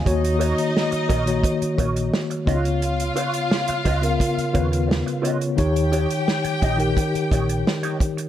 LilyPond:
<<
  \new Staff \with { instrumentName = "String section" } { \time 4/4 \key des \mixolydian \tempo 4 = 87 <ees' ees''>2. r8 <f' f''>8~ | <f' f''>2.~ <f' f''>8 r8 | <g' g''>2.~ <g' g''>8 r8 | }
  \new Staff \with { instrumentName = "Clean electric guitar" } { \time 4/4 \key des \mixolydian r8 <ges' bes' des''>16 r8. <ges' bes' ees''>16 r8. <ges' bes' des''>16 r8. <f' ces'' ees''>16 r16 | r8 <f' ces'' des''>16 r8. <f' ces'' ees''>16 r8. <f' ces'' des''>16 r8. <f' ces'' ees''>16 r16 | r8 <ees' g' des''>16 r8. <ees' g' ees''>16 r8. <ees' g' des''>16 r8 <ees' g' des''>16 r8 | }
  \new Staff \with { instrumentName = "Tine electric piano" } { \time 4/4 \key des \mixolydian << { aes''16 r2. r8. | r1 | r1 | } \\ { <ees bes ges' des''>4 r8. <ees bes ges' des''>4~ <ees bes ges' des''>16 r8 <des ces' ees' f' des''>8~ | <des ces' ees' f' des''>4 r8. <des ces' f' bes'>8 r16 <des ces' f' ces''>8 r8 <des ces' f' des''>16 r16 | <ees ees' g' des''>4 r8. <ees ees' g' bes'>4~ <ees ees' g' bes'>16 r4 | } >> }
  \new Staff \with { instrumentName = "Fingered electric bass" } { \clef bass \time 4/4 \key des \mixolydian ees,8. r8. bes,,8 r8 bes,,8 r8 des,8~ | des,8 r4 des,8 r8 ees,8. r8. | ees,8. r8. bes,,8 r8 bes,,8 r4 | }
  \new DrumStaff \with { instrumentName = "Drums" } \drummode { \time 4/4 <hh bd>16 hh16 hh16 hh16 sn16 hh16 <hh bd>16 hh16 <hh bd>16 hh16 <hh bd>16 hh16 sn16 hh16 <hh bd>16 hh16 | hh16 hh16 hh16 hh16 sn16 hh16 <hh bd>16 hh16 <hh bd>16 hh16 <hh bd>16 hh16 sn16 hh16 hh16 hh16 | <hh bd>16 hh16 hh16 hh16 sn16 hh16 <hh bd>16 hh16 <hh bd>16 hh16 <hh bd>16 hh16 sn16 hh16 <hh bd>16 hh16 | }
>>